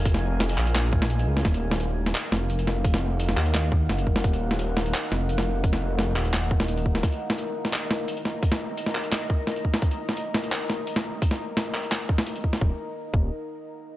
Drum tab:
HH |xx--xo-xx---xx--|xx--x--xx---xx--|xx--x--xx---xx--|xx--x--xx---xx--|
CP |------x-x-------|--------x-------|------x-x-------|--------x-------|
SD |-o--o---o--o---o|o--o---o--o---o-|-o---o--o---o--o|---o--o---o--o--|
BD |o---------o-----|o---------------|o---------o---o-|o---------------|

HH |xx--x--xx---xx--|xx--x--xx---xx--|xx--x--xx---xx--|xx--x--xx---xx--|
CP |------x-x-------|--------x-------|------x-x-------|--------x-------|
SD |-o--o---o--o---o|o--o---o--o---o-|-o---o--o---o--o|---o--o---o--o--|
BD |o---------o---o-|o---------------|o---------o---o-|o---------------|

HH |xx--x--xx---xx--|----------------|
CP |------x-x-------|----------------|
SD |-o--o---o--o---o|----------------|
BD |o---------o---o-|o-----o---------|